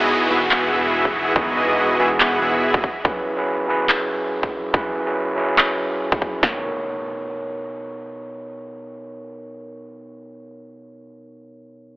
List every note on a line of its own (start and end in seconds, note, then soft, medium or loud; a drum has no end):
0.00 0.28 E1 loud
0.00 0.28 E3 medium
0.00 0.28 B3 medium
0.00 0.29 B3 medium
0.00 1.36 D#4 medium
0.00 0.28 E4 medium
0.00 0.28 F#4 medium
0.00 0.31 F#4 medium
0.00 0.28 G#4 medium
0.00 0.32 G#4 medium
0.00 0.28 D#5 medium
0.00 downlifter medium
0.28 0.49 E1 loud
0.28 1.33 E3 medium
0.28 1.33 B3 medium
0.28 0.40 B3 medium
0.28 0.40 E4 medium
0.28 0.40 F#4 medium
0.28 1.34 F#4 medium
0.28 0.40 G#4 medium
0.28 1.35 G#4 medium
0.28 0.40 E5 loud
0.51 0.71 E1 loud
0.51 0.71 B3 loud
0.51 0.71 E4 medium
0.51 0.71 F#4 medium
0.51 0.71 G#4 medium
0.51 0.71 F#5 loud
0.51 clap loud
0.73 1.34 E1 medium
0.73 1.34 B3 medium
0.73 1.34 E4 medium
0.73 1.34 F#4 medium
0.73 1.34 G#4 medium
0.73 1.34 E5 medium
1.05 kick medium
1.35 1.97 E1 loud
1.35 1.65 E3 medium
1.35 1.66 B3 medium
1.35 1.97 B3 medium
1.35 1.66 D#4 medium
1.35 1.97 E4 medium
1.35 1.97 F#4 medium
1.35 1.66 F#4 medium
1.35 1.97 G#4 medium
1.35 1.66 G#4 medium
1.35 1.97 D#5 medium
1.35 kick loud
1.67 1.96 E3 medium
1.67 1.97 B3 medium
1.67 1.97 D#4 medium
1.67 1.97 F#4 medium
1.67 1.97 G#4 medium
1.97 2.18 E1 loud
1.97 2.82 E3 medium
1.97 2.82 B3 medium
1.97 2.09 B3 medium
1.97 2.09 E4 medium
1.97 2.09 F#4 medium
1.97 2.83 F#4 medium
1.97 2.09 G#4 medium
1.97 2.84 G#4 loud
1.97 2.09 E5 loud
2.20 2.40 E1 loud
2.20 2.40 B3 medium
2.20 2.40 E4 medium
2.20 2.40 F#4 medium
2.20 2.40 G#4 medium
2.20 2.40 F#5 loud
2.20 clap loud
2.42 2.81 E1 medium
2.42 2.83 B3 medium
2.42 2.83 E4 medium
2.42 2.83 F#4 medium
2.42 2.83 G#4 medium
2.42 2.83 E5 medium
2.74 kick loud
2.84 kick medium
3.04 3.34 F#3 medium
3.04 3.35 C#4 medium
3.04 3.35 E4 medium
3.04 3.35 G#4 medium
3.04 3.35 B4 medium
3.04 kick loud
3.37 3.65 F#3 medium
3.37 3.66 C#4 medium
3.37 3.66 E4 medium
3.37 3.66 G#4 medium
3.37 3.67 B4 medium
3.66 4.71 F#3 medium
3.66 4.71 C#4 medium
3.66 4.72 E4 medium
3.66 4.72 G#4 medium
3.70 4.73 B4 medium
3.89 clap loud
4.43 kick medium
4.73 5.03 F#3 medium
4.73 5.04 C#4 medium
4.73 5.04 E4 medium
4.73 5.04 G#4 medium
4.73 5.04 B4 loud
4.73 kick loud
5.06 5.34 F#3 medium
5.06 5.35 C#4 medium
5.06 5.35 E4 medium
5.06 5.35 G#4 medium
5.06 5.36 B4 medium
5.35 6.40 F#3 medium
5.35 6.40 C#4 medium
5.35 6.41 E4 medium
5.35 6.41 G#4 medium
5.35 6.42 B4 medium
5.58 clap medium
6.12 kick loud
6.22 kick medium
6.40 11.00 B2 medium
6.40 11.02 B3 medium
6.40 11.03 D#4 medium
6.40 kick loud
6.40 snare medium
6.40 impact medium
6.44 11.05 A#4 medium
6.44 11.06 C#5 medium